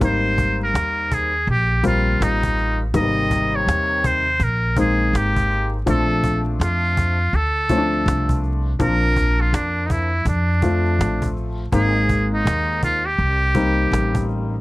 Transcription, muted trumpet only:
0.05 0.58 C5 medium
0.63 1.15 A#4 medium
1.14 1.49 G#4 medium
1.50 1.83 G4 medium
1.87 2.24 F4 medium
2.23 2.81 D#4 medium
2.96 3.57 D#5 loud
3.55 4.08 C#5 medium
4.06 4.45 C5 medium
4.43 4.79 A#4 medium
4.80 5.18 G#4 medium
5.17 5.74 G4 medium
5.90 6.43 A4 medium
6.62 7.37 F4 medium
7.35 8.44 A4 medium
8.82 9.42 A#4 loud
9.41 9.56 F4 medium
9.55 9.88 D4 medium
9.86 9.93 D#4 medium
9.92 10.27 E4 medium
10.28 11.33 D4 medium
11.75 12.29 G#4 loud
12.34 12.80 D#4 medium
12.84 13.07 F4 medium
13.06 14.29 G4 loud

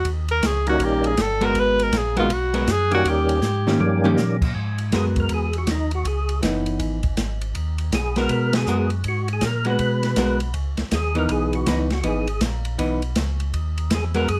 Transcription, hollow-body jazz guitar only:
1.41 1.90 G#3 medium
1.41 1.90 B3 medium
1.41 1.90 F#4 medium
1.41 1.90 A#4 medium
2.16 2.29 G#3 medium
2.16 2.29 B3 medium
2.16 2.29 F#4 medium
2.16 2.29 A#4 medium
2.54 2.66 G#3 medium
2.54 2.67 B3 medium
2.54 2.67 F#4 medium
2.54 2.67 A#4 medium
3.67 3.79 D#3 medium
3.67 3.79 A#3 medium
3.67 3.80 C#4 medium
3.67 3.80 G4 medium
4.04 4.16 D#3 medium
4.04 4.17 A#3 medium
4.04 4.17 C#4 medium
4.04 4.17 G4 medium
4.93 5.49 G#3 medium
4.93 5.50 B3 medium
4.93 5.50 F#4 medium
4.93 5.50 A#4 medium
6.43 6.99 E3 medium
6.43 7.00 B3 medium
6.43 7.00 D#4 medium
8.16 8.65 G#3 medium
8.16 8.65 B3 medium
8.16 8.65 F#4 medium
8.16 8.65 A#4 medium
8.67 8.89 G#3 medium
8.67 8.89 B3 medium
8.67 8.89 F#4 medium
8.67 8.89 A#4 medium
9.65 10.14 G#3 medium
9.65 10.14 B3 medium
9.65 10.14 F#4 medium
10.17 10.38 G#3 medium
10.17 10.39 B3 medium
10.17 10.39 F#4 medium
10.17 10.39 A#4 medium
11.15 11.64 E3 medium
11.15 11.64 B3 medium
11.15 11.64 D#4 medium
11.67 11.88 E3 medium
11.67 11.89 B3 medium
11.67 11.89 D#4 medium
12.04 12.25 E3 medium
12.04 12.26 B3 medium
12.04 12.26 D#4 medium
12.78 13.00 E3 medium
12.78 13.00 B3 medium
12.78 13.01 D#4 medium
14.15 14.27 G#3 medium
14.15 14.27 B3 medium
14.15 14.28 F#4 medium
14.15 14.28 A#4 medium

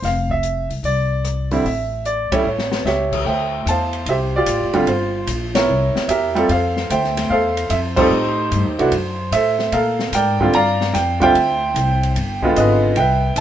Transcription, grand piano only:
0.05 0.32 F5 medium
0.31 0.68 E5 medium
0.85 1.48 D5 medium
1.51 1.64 D3 medium
1.51 1.64 G3 medium
1.51 1.64 C4 medium
1.51 1.64 E4 medium
1.66 2.03 E5 medium
2.06 2.33 D5 medium
2.32 2.44 G3 medium
2.32 2.45 A3 medium
2.32 2.45 C#4 medium
2.32 2.45 E4 medium
2.32 2.82 C#5 medium
2.86 3.24 G4 medium
2.86 3.25 C#5 medium
2.86 3.23 E5 medium
3.26 3.69 C5 medium
3.26 4.04 E5 medium
3.26 3.68 G5 medium
3.69 4.08 C5 medium
3.69 4.45 F5 medium
3.69 4.09 A5 medium
4.09 4.36 G4 medium
4.09 4.85 C5 medium
4.09 4.15 E5 medium
4.36 4.73 F4 medium
4.36 4.86 G4 medium
4.36 4.72 D5 medium
4.74 4.86 D3 medium
4.74 4.86 G3 medium
4.74 4.87 C4 medium
4.74 4.87 F4 medium
4.88 5.66 F4 medium
4.88 5.26 C5 medium
5.55 6.33 E4 medium
5.55 6.09 A#4 medium
5.55 6.05 C#5 medium
6.09 6.47 G4 medium
6.09 6.47 A#4 medium
6.09 6.46 E5 medium
6.35 6.48 G3 medium
6.35 6.48 C4 medium
6.35 6.48 F4 medium
6.35 6.49 A4 medium
6.51 7.27 A4 medium
6.51 6.90 C5 medium
6.51 6.88 F5 medium
6.91 7.31 C5 medium
6.91 7.68 E5 medium
6.91 7.32 G5 medium
7.30 7.97 A4 medium
7.30 7.95 C5 medium
7.30 7.72 F5 medium
7.70 7.77 E5 medium
7.96 8.10 G3 medium
7.96 8.10 C4 medium
7.96 8.88 D#4 medium
7.96 8.10 F4 medium
7.96 8.88 G4 medium
7.96 8.10 A4 medium
7.96 9.33 C5 loud
8.79 8.91 E3 medium
8.79 8.91 A3 medium
8.79 8.91 D4 medium
8.79 8.91 F#4 medium
9.33 9.71 A4 medium
9.33 9.71 C5 medium
9.33 9.74 E5 medium
9.73 10.50 A4 medium
9.73 10.13 A#4 medium
9.73 10.10 F5 medium
10.14 10.91 A#4 medium
10.14 10.55 D5 medium
10.14 10.55 G5 loud
10.40 10.53 D3 medium
10.40 10.52 G3 medium
10.40 10.53 C4 medium
10.40 10.53 F4 medium
10.55 11.32 D5 medium
10.55 11.32 F5 medium
10.55 10.92 A#5 loud
10.94 11.19 G5 medium
11.20 11.33 D3 medium
11.20 11.33 G3 medium
11.20 11.34 C4 medium
11.20 11.34 F4 medium
11.20 12.13 C5 medium
11.20 12.13 E5 medium
11.20 12.53 G5 loud
12.42 12.94 D3 medium
12.42 12.94 G#3 medium
12.42 12.94 B3 medium
12.42 12.95 F4 medium
12.57 12.95 G#4 medium
12.57 12.96 B4 medium
12.57 12.98 D#5 medium
12.97 13.40 B4 medium
12.97 13.37 E5 medium
12.97 13.38 G5 medium

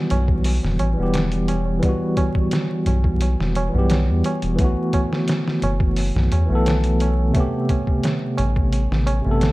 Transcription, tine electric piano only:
0.00 0.91 E3 medium
0.00 0.93 G3 medium
0.00 0.94 B3 medium
0.00 0.96 F#4 medium
0.94 1.77 E3 medium
0.94 1.79 G3 medium
1.00 1.80 B3 medium
1.00 1.82 G4 medium
1.79 3.67 E3 medium
1.79 3.69 G3 medium
1.85 3.70 B3 medium
1.85 3.72 F#4 medium
3.69 4.53 E3 medium
3.69 4.54 G3 medium
3.75 4.56 B3 medium
3.75 4.57 G4 medium
4.55 6.43 E3 medium
4.55 6.45 A3 medium
4.61 6.46 B3 medium
4.61 6.48 F#4 medium
6.46 7.29 E3 medium
6.46 7.31 A3 medium
6.52 7.32 B3 medium
6.52 7.34 A4 loud
7.31 9.19 C3 medium
7.31 9.20 A3 medium
7.37 9.22 B3 medium
7.37 9.23 G4 loud
9.22 9.52 C3 medium
9.22 9.52 A3 medium
9.28 9.52 B3 medium
9.28 9.52 A4 medium

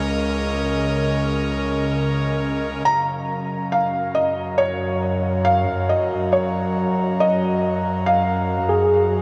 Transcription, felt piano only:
2.85 3.76 A#5 loud
3.72 4.18 F5 medium
4.15 4.61 D#5 medium
4.58 5.49 C#5 loud
5.45 5.91 F5 loud
5.89 6.31 D#5 medium
6.33 7.24 C#5 medium
7.20 8.11 D#5 loud
8.06 9.22 F5 medium

